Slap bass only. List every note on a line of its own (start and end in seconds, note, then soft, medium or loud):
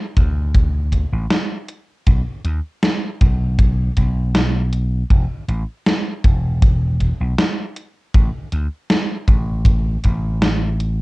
0.17 1.03 D2 medium
1.13 1.25 A1 medium
2.07 2.21 B1 loud
2.44 2.59 D#2 medium
3.21 3.88 B1 medium
3.97 5.02 B1 medium
5.10 5.25 E1 loud
5.48 5.63 A1 medium
6.24 7.11 E1 medium
7.20 7.33 B1 loud
8.14 8.29 A1 loud
8.52 8.66 D2 medium
9.28 9.96 A1 loud
10.05 11.02 A1 medium